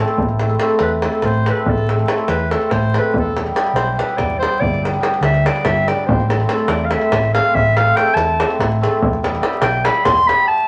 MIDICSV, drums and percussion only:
0, 0, Header, 1, 2, 480
1, 0, Start_track
1, 0, Key_signature, 0, "minor"
1, 0, Tempo, 419580
1, 237, Time_signature, 7, 3, 24, 8
1, 12217, End_track
2, 0, Start_track
2, 0, Title_t, "Davul"
2, 89, Note_on_c, 9, 37, 30
2, 203, Note_off_c, 9, 37, 0
2, 206, Note_on_c, 9, 43, 79
2, 320, Note_off_c, 9, 43, 0
2, 327, Note_on_c, 9, 37, 18
2, 441, Note_off_c, 9, 37, 0
2, 451, Note_on_c, 9, 37, 52
2, 566, Note_off_c, 9, 37, 0
2, 566, Note_on_c, 9, 37, 23
2, 680, Note_off_c, 9, 37, 0
2, 681, Note_on_c, 9, 37, 62
2, 795, Note_off_c, 9, 37, 0
2, 799, Note_on_c, 9, 37, 19
2, 902, Note_off_c, 9, 37, 0
2, 902, Note_on_c, 9, 37, 66
2, 1017, Note_off_c, 9, 37, 0
2, 1170, Note_on_c, 9, 37, 67
2, 1285, Note_off_c, 9, 37, 0
2, 1286, Note_on_c, 9, 37, 23
2, 1399, Note_off_c, 9, 37, 0
2, 1399, Note_on_c, 9, 37, 55
2, 1399, Note_on_c, 9, 43, 53
2, 1514, Note_off_c, 9, 37, 0
2, 1514, Note_off_c, 9, 43, 0
2, 1531, Note_on_c, 9, 37, 18
2, 1646, Note_off_c, 9, 37, 0
2, 1673, Note_on_c, 9, 37, 59
2, 1787, Note_off_c, 9, 37, 0
2, 1901, Note_on_c, 9, 43, 89
2, 2016, Note_off_c, 9, 43, 0
2, 2032, Note_on_c, 9, 37, 21
2, 2147, Note_off_c, 9, 37, 0
2, 2162, Note_on_c, 9, 37, 53
2, 2276, Note_off_c, 9, 37, 0
2, 2280, Note_on_c, 9, 37, 22
2, 2383, Note_off_c, 9, 37, 0
2, 2383, Note_on_c, 9, 37, 71
2, 2496, Note_off_c, 9, 37, 0
2, 2496, Note_on_c, 9, 37, 26
2, 2609, Note_off_c, 9, 37, 0
2, 2609, Note_on_c, 9, 37, 72
2, 2724, Note_off_c, 9, 37, 0
2, 2876, Note_on_c, 9, 37, 62
2, 2990, Note_off_c, 9, 37, 0
2, 2991, Note_on_c, 9, 37, 23
2, 3104, Note_off_c, 9, 37, 0
2, 3104, Note_on_c, 9, 37, 61
2, 3104, Note_on_c, 9, 43, 61
2, 3218, Note_off_c, 9, 37, 0
2, 3218, Note_off_c, 9, 43, 0
2, 3238, Note_on_c, 9, 37, 19
2, 3352, Note_off_c, 9, 37, 0
2, 3367, Note_on_c, 9, 37, 60
2, 3482, Note_off_c, 9, 37, 0
2, 3590, Note_on_c, 9, 43, 82
2, 3705, Note_off_c, 9, 43, 0
2, 3727, Note_on_c, 9, 37, 18
2, 3842, Note_off_c, 9, 37, 0
2, 3850, Note_on_c, 9, 37, 60
2, 3963, Note_off_c, 9, 37, 0
2, 3963, Note_on_c, 9, 37, 26
2, 4074, Note_off_c, 9, 37, 0
2, 4074, Note_on_c, 9, 37, 68
2, 4188, Note_off_c, 9, 37, 0
2, 4193, Note_on_c, 9, 37, 26
2, 4302, Note_off_c, 9, 37, 0
2, 4302, Note_on_c, 9, 37, 70
2, 4416, Note_off_c, 9, 37, 0
2, 4565, Note_on_c, 9, 37, 60
2, 4678, Note_off_c, 9, 37, 0
2, 4678, Note_on_c, 9, 37, 23
2, 4786, Note_off_c, 9, 37, 0
2, 4786, Note_on_c, 9, 37, 57
2, 4786, Note_on_c, 9, 43, 62
2, 4900, Note_off_c, 9, 37, 0
2, 4900, Note_off_c, 9, 43, 0
2, 4933, Note_on_c, 9, 37, 20
2, 5048, Note_off_c, 9, 37, 0
2, 5064, Note_on_c, 9, 37, 64
2, 5179, Note_off_c, 9, 37, 0
2, 5287, Note_on_c, 9, 43, 82
2, 5401, Note_off_c, 9, 43, 0
2, 5423, Note_on_c, 9, 37, 25
2, 5538, Note_off_c, 9, 37, 0
2, 5552, Note_on_c, 9, 37, 60
2, 5647, Note_off_c, 9, 37, 0
2, 5647, Note_on_c, 9, 37, 26
2, 5757, Note_off_c, 9, 37, 0
2, 5757, Note_on_c, 9, 37, 71
2, 5872, Note_off_c, 9, 37, 0
2, 5879, Note_on_c, 9, 37, 24
2, 5978, Note_off_c, 9, 37, 0
2, 5978, Note_on_c, 9, 37, 66
2, 6093, Note_off_c, 9, 37, 0
2, 6113, Note_on_c, 9, 37, 27
2, 6227, Note_off_c, 9, 37, 0
2, 6246, Note_on_c, 9, 37, 74
2, 6358, Note_off_c, 9, 37, 0
2, 6358, Note_on_c, 9, 37, 28
2, 6460, Note_off_c, 9, 37, 0
2, 6460, Note_on_c, 9, 37, 77
2, 6460, Note_on_c, 9, 43, 68
2, 6574, Note_off_c, 9, 37, 0
2, 6574, Note_off_c, 9, 43, 0
2, 6596, Note_on_c, 9, 37, 22
2, 6711, Note_off_c, 9, 37, 0
2, 6726, Note_on_c, 9, 37, 68
2, 6841, Note_off_c, 9, 37, 0
2, 6964, Note_on_c, 9, 43, 104
2, 7079, Note_off_c, 9, 43, 0
2, 7092, Note_on_c, 9, 37, 22
2, 7207, Note_off_c, 9, 37, 0
2, 7210, Note_on_c, 9, 37, 74
2, 7323, Note_off_c, 9, 37, 0
2, 7323, Note_on_c, 9, 37, 25
2, 7425, Note_off_c, 9, 37, 0
2, 7425, Note_on_c, 9, 37, 76
2, 7528, Note_off_c, 9, 37, 0
2, 7528, Note_on_c, 9, 37, 25
2, 7642, Note_off_c, 9, 37, 0
2, 7644, Note_on_c, 9, 37, 73
2, 7758, Note_off_c, 9, 37, 0
2, 7901, Note_on_c, 9, 37, 63
2, 8015, Note_off_c, 9, 37, 0
2, 8025, Note_on_c, 9, 37, 31
2, 8140, Note_off_c, 9, 37, 0
2, 8145, Note_on_c, 9, 37, 78
2, 8145, Note_on_c, 9, 43, 59
2, 8259, Note_off_c, 9, 37, 0
2, 8259, Note_off_c, 9, 43, 0
2, 8278, Note_on_c, 9, 37, 26
2, 8392, Note_off_c, 9, 37, 0
2, 8403, Note_on_c, 9, 37, 66
2, 8518, Note_off_c, 9, 37, 0
2, 8634, Note_on_c, 9, 43, 89
2, 8748, Note_off_c, 9, 43, 0
2, 8759, Note_on_c, 9, 37, 21
2, 8873, Note_off_c, 9, 37, 0
2, 8886, Note_on_c, 9, 37, 65
2, 8999, Note_off_c, 9, 37, 0
2, 8999, Note_on_c, 9, 37, 28
2, 9114, Note_off_c, 9, 37, 0
2, 9118, Note_on_c, 9, 37, 71
2, 9233, Note_off_c, 9, 37, 0
2, 9237, Note_on_c, 9, 37, 27
2, 9347, Note_off_c, 9, 37, 0
2, 9347, Note_on_c, 9, 37, 69
2, 9462, Note_off_c, 9, 37, 0
2, 9609, Note_on_c, 9, 37, 81
2, 9723, Note_off_c, 9, 37, 0
2, 9729, Note_on_c, 9, 37, 28
2, 9843, Note_off_c, 9, 37, 0
2, 9844, Note_on_c, 9, 37, 73
2, 9844, Note_on_c, 9, 43, 62
2, 9958, Note_off_c, 9, 37, 0
2, 9958, Note_off_c, 9, 43, 0
2, 9975, Note_on_c, 9, 37, 24
2, 10089, Note_off_c, 9, 37, 0
2, 10107, Note_on_c, 9, 37, 60
2, 10221, Note_off_c, 9, 37, 0
2, 10323, Note_on_c, 9, 43, 95
2, 10438, Note_off_c, 9, 43, 0
2, 10447, Note_on_c, 9, 37, 24
2, 10561, Note_off_c, 9, 37, 0
2, 10573, Note_on_c, 9, 37, 65
2, 10687, Note_off_c, 9, 37, 0
2, 10693, Note_on_c, 9, 37, 29
2, 10789, Note_off_c, 9, 37, 0
2, 10789, Note_on_c, 9, 37, 68
2, 10903, Note_off_c, 9, 37, 0
2, 10906, Note_on_c, 9, 37, 29
2, 11001, Note_off_c, 9, 37, 0
2, 11001, Note_on_c, 9, 37, 88
2, 11115, Note_off_c, 9, 37, 0
2, 11267, Note_on_c, 9, 37, 79
2, 11377, Note_off_c, 9, 37, 0
2, 11377, Note_on_c, 9, 37, 27
2, 11492, Note_off_c, 9, 37, 0
2, 11502, Note_on_c, 9, 37, 82
2, 11502, Note_on_c, 9, 43, 73
2, 11616, Note_off_c, 9, 37, 0
2, 11616, Note_off_c, 9, 43, 0
2, 11643, Note_on_c, 9, 37, 23
2, 11758, Note_off_c, 9, 37, 0
2, 11774, Note_on_c, 9, 37, 62
2, 11888, Note_off_c, 9, 37, 0
2, 12217, End_track
0, 0, End_of_file